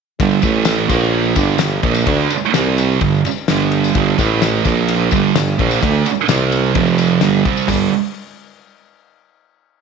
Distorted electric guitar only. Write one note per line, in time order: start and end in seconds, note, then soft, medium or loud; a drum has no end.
0.20 0.43 G2 loud
0.20 0.42 D3 loud
0.20 0.43 G3 loud
0.42 0.89 A2 medium
0.42 0.89 E3 loud
0.42 0.89 A3 loud
0.89 1.36 A#2 medium
0.89 1.36 F3 loud
0.89 1.36 A#3 loud
1.36 1.59 G2 loud
1.36 1.59 D3 loud
1.36 1.60 G3 loud
1.61 1.79 G2 medium
1.61 1.79 D3 medium
1.83 2.06 A#2 medium
1.83 2.06 F3 medium
1.83 2.07 A#3 loud
2.07 2.30 D3 loud
2.07 2.30 A3 loud
2.07 2.30 D4 loud
2.31 muted distorted electric guitar stroke medium
2.54 3.00 C3 medium
2.54 3.01 G3 loud
2.54 3.01 C4 loud
3.01 3.20 G2 medium
3.01 3.20 D3 medium
3.25 muted distorted electric guitar stroke medium
3.49 3.94 G2 medium
3.49 3.95 D3 medium
3.49 3.95 G3 loud
3.96 4.18 G2 loud
3.96 4.18 D3 loud
3.96 4.19 G3 loud
4.19 4.65 A2 loud
4.19 4.65 E3 loud
4.19 4.65 A3 loud
4.66 5.11 A#2 loud
4.66 5.12 F3 medium
4.66 5.12 A#3 loud
5.13 5.35 G2 medium
5.13 5.35 D3 loud
5.13 5.35 G3 loud
5.36 5.54 G2 medium
5.36 5.54 D3 medium
5.58 5.81 A#2 loud
5.58 5.81 F3 loud
5.58 5.82 A#3 loud
5.81 6.04 D3 loud
5.81 6.05 A3 loud
5.81 6.05 D4 loud
6.05 muted distorted electric guitar stroke medium
6.29 6.74 C3 loud
6.29 6.75 G3 loud
6.29 6.75 C4 loud
6.74 7.21 F2 medium
6.74 7.21 C3 medium
6.74 7.21 F3 loud
7.21 7.44 G2 loud
7.21 7.45 D3 medium
7.21 7.45 G3 loud
7.45 7.68 C3 medium
7.45 7.68 G3 loud
7.45 7.68 C4 loud
7.68 7.87 G2 loud
7.68 7.87 D3 loud
7.68 7.87 G3 loud